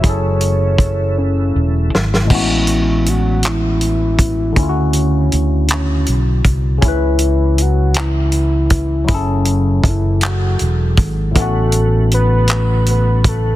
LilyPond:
<<
  \new Staff \with { instrumentName = "Soft synth lead" } { \time 6/8 \key a \major \tempo 4. = 53 cis''4. cis'4 r8 | e'4 fis'8 e'4. | cis'4. cis'4 r8 | e'4 fis'8 e'4. |
cis'4 e'8 fis'4 r8 | a'4 b'4 b'8 a'8 | }
  \new Staff \with { instrumentName = "Tine electric piano" } { \time 6/8 \key a \major <fis e' gis' a'>2. | <a, gis b cis' fis'>2. | <d cis' e' f' fis'>2. | <cis cis' e' b'>2. |
<fis e' gis' a'>2. | <a, a b cis' fis'>2. | }
  \new Staff \with { instrumentName = "Tonewheel organ" } { \clef bass \time 6/8 \key a \major <cis e fis a e'>2. | r2. | r2. | r2. |
r2. | <cis fis a b fis'>2. | }
  \new Staff \with { instrumentName = "Fingered electric bass" } { \clef bass \time 6/8 \key a \major fis,,2 e,,8 gis,,8 | a,,2. | d,4 d,4 b,,8 c,8 | cis,2. |
fis,,4 fis,,4 e,,8 gis,,8 | a,,2. | }
  \new DrumStaff \with { instrumentName = "Drums" } \drummode { \time 6/8 <hh bd>8 hh8 <hh bd>8 r4 sn16 sn16 | <cymc bd>8 hh8 hh8 <hc hh>8 hh8 <hh bd>8 | <hh bd>8 hh8 hh8 <hc hh>8 hh8 <hh bd>8 | <hh bd>8 hh8 hh8 <hc hh>8 hh8 <hh bd>8 |
<hh bd>8 hh8 <hh bd>8 <hc hh>8 hh8 <hh bd>8 | <hh bd>8 hh8 hh8 <hc hh>8 hh8 <hh bd>8 | }
>>